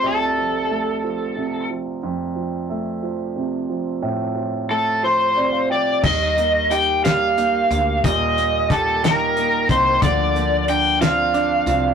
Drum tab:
CC |------|------|------|x-----|
HH |------|------|------|-xxxxx|
SD |------|------|------|---o--|
BD |------|------|------|o-----|

CC |------|------|
HH |xxxxxx|xxxxxx|
SD |---o--|---o--|
BD |o-o--o|o-----|